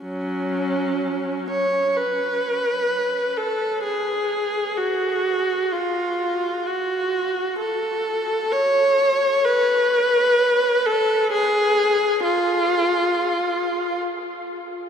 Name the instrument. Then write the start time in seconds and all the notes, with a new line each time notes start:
viola
0.03 F#3 C#4
1.50 C#5
1.96 B4
3.37 A4
3.84 G#4
4.77 F#4
5.72 F4
6.66 F#4
7.59 A4
8.51 C#5
9.45 B4
10.86 A4
11.32 G#4
12.24 F4